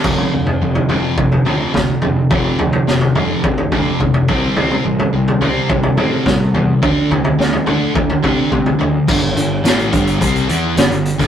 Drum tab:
CC |x---------------|----------------|----------------|----------------|
HH |----------------|----------------|----------------|----------------|
SD |------------o---|----o-----------|------------o---|----o-----------|
T2 |-o----o-----o---|------o---o-o---|-o----o-----o---|------o---o-o---|
FT |o--o-oo-ooo---o-|o-oo-oo-ooo--oo-|o--o-oo-ooo---o-|o-oo-oo-ooo--oo-|
BD |o-------o---o---|o-------o-o-o-o-|--------o---o---|o-------o-o-o---|

CC |x---------------|
HH |--x-xxxxxxx-xxxx|
SD |----o-------o--o|
T2 |----------------|
FT |----------------|
BD |o-----o-o------o|